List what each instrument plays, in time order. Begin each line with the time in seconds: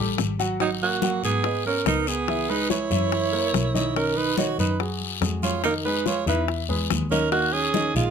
Already playing: double bass A1, upright piano G3 G4
0.00 upright piano A4
0.17 double bass G#1, high bongo, low bongo, high conga, short guiro
0.39 upright piano F#3 F#4 F#5, short guiro
0.60 upright piano F#3 F#4 F#5, tenor saxophone F#3, alto saxophone D#4, high bongo, high conga, long guiro
0.82 tenor saxophone A#3, alto saxophone F#4, high conga
1.02 upright piano F#3 F#4 F#5, high bongo, high conga, short guiro
1.23 double bass G#2, tenor saxophone B3, alto saxophone G#4, high conga, short guiro
1.44 upright piano B3 B4 D#5, high bongo, high conga, long guiro
1.65 tenor saxophone C#4, alto saxophone A#4, high conga
1.86 double bass C#2, upright piano B3 B4 D#5, tenor saxophone D#4, alto saxophone A#4, high bongo, low bongo, high conga, short guiro
2.07 tenor saxophone B3, alto saxophone G#4, short guiro
2.28 upright piano E3 E4 E5, high bongo, high conga, long guiro
2.49 upright piano G#3 G#4 B4, tenor saxophone D#4, alto saxophone B4, high bongo, high conga
2.70 tenor saxophone E4, alto saxophone C#5, high bongo, high conga, short guiro
2.90 double bass F#2, upright piano E3 E4 E5, high bongo, short guiro
3.12 high bongo, high conga, long guiro
3.32 upright piano A#3 A#4 C#5, high bongo, high conga
3.53 double bass B1, high bongo, low bongo, high conga, short guiro
3.74 upright piano D#3 D#4 D#5, tenor saxophone E4, alto saxophone C#5, high conga, short guiro
3.95 upright piano D#3 D#4 D#5, tenor saxophone C#4, alto saxophone A#4, high bongo, high conga, long guiro
4.16 tenor saxophone D#4, alto saxophone B4, high conga
4.37 upright piano D#3 D#4 D#5, tenor saxophone F#4, alto saxophone C#5, high bongo, high conga, short guiro
4.58 double bass F#2, tenor saxophone D#4, alto saxophone B4, high conga, short guiro
4.80 upright piano F#3 F#4 G#4, high bongo, high conga, long guiro
5.01 high conga
5.22 double bass F2, upright piano G#3 F#4 G#4, high bongo, low bongo, high conga, short guiro
5.43 tenor saxophone F4, alto saxophone C#5, high conga, short guiro
5.64 upright piano D#3 D#4 D#5, tenor saxophone D#4, alto saxophone A#4, high bongo, high conga, long guiro
5.85 upright piano G#3 G#4 B4, tenor saxophone D#4, alto saxophone B4, high bongo, high conga
6.06 tenor saxophone F4, alto saxophone C#5, high bongo, high conga, short guiro
6.26 double bass E2, upright piano E3 E4 E5, tenor saxophone D#4, alto saxophone B4, high bongo, short guiro
6.48 high bongo, high conga, long guiro
6.69 double bass E2, upright piano G#3 G#4 B4, high bongo, high conga
6.90 double bass D#2, high bongo, low bongo, high conga, short guiro
7.11 upright piano D#3 D#4 D#5, tenor saxophone C#4, alto saxophone A#4, high conga, short guiro
7.32 upright piano D#3 D#4 D#5, tenor saxophone A#3, alto saxophone F#4, high bongo, high conga, long guiro
7.53 tenor saxophone C#4, alto saxophone G#4, high conga
7.74 upright piano D#3 D#4 D#5, high bongo, high conga, short guiro
7.95 double bass A#1, tenor saxophone G#3, alto saxophone F4, high conga, short guiro